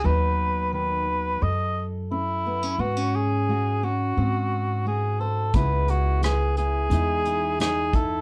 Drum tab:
HH |--------|--------|xxxxxxxx|
SD |--------|--------|--r---r-|
BD |--------|--------|o------o|